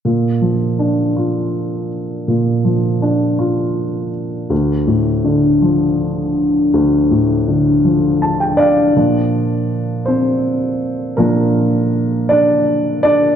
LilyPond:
<<
  \new Staff \with { instrumentName = "Upright piano" } { \time 6/8 \key bes \major \tempo 4. = 54 << { r2. | r2. | r2. | r2 a''16 g''16 f''8 |
r2. | r2. | } \\ { r2. | r2. | r2. | r2 r8 <d' d''>8~ |
<d' d''>4. <c' c''>4. | <bes bes'>4. <d' d''>4 <d' d''>8 | } >> }
  \new Staff \with { instrumentName = "Upright piano" } { \clef bass \time 6/8 \key bes \major bes,8 f8 d'8 f'4. | bes,8 f8 d'8 f'4. | d,8 a,8 d8 f4. | d,8 a,8 d8 f4. |
<bes, f d'>2. | <bes, f d'>4. r4. | }
>>